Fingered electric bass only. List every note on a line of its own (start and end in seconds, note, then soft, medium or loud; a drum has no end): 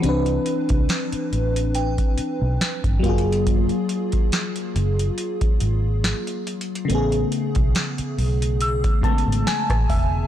0.04 0.37 C2 loud
0.70 0.85 C2 medium
1.13 muted fingered electric bass stroke soft
1.33 1.98 A1 medium
2.19 muted fingered electric bass stroke soft
2.42 2.57 B1 medium
2.84 2.99 G1 medium
3.04 3.69 F#1 loud
4.76 5.08 F#1 medium
5.62 6.12 G#1 medium
6.90 7.23 A1 loud
7.56 7.71 B1 medium
7.99 muted fingered electric bass stroke soft
8.18 8.84 B1 medium
9.03 muted fingered electric bass stroke soft
9.28 9.42 G#1 medium
9.70 9.85 A1 medium
9.90 10.22 E1 medium